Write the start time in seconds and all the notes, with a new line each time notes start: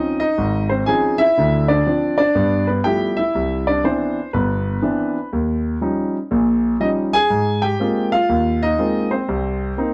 Already playing: F3 C4 C#4 D#4 D#5
0.20 D#4 D#5
0.38 G#1
0.69 C4 C5
0.86 F3 C4 C#4 D#4 G#4 G#5
1.18 E4 E5
1.38 D2 D3
1.68 D4 D5
1.87 F3 C4 D4
2.18 D4 D5
2.35 G2 B3
2.67 B3 B4
2.84 F3 G3 A3 B3 E4 G4 G5
3.17 E4 E5
3.35 C2
3.67 D4 D5
3.84 E3 B3 C4 D4 C5
4.33 G1 B3 B4
4.82 E3 B3 C4 D4
5.33 D#2
5.81 F3 G3 C#4 D#4
6.31 A#1 A#2
6.80 F3 G3 C#4 D#4 D#5
7.13 G#4 G#5
7.30 G#2
7.62 G4 G5
7.80 G#3 A#3 C4 F4
8.12 F4 F5
8.29 D#2
8.63 D#4 D#5
8.79 G#3 A#3 C4 F4
9.11 C4 C5
9.28 C2
9.77 A#3 C4 D#4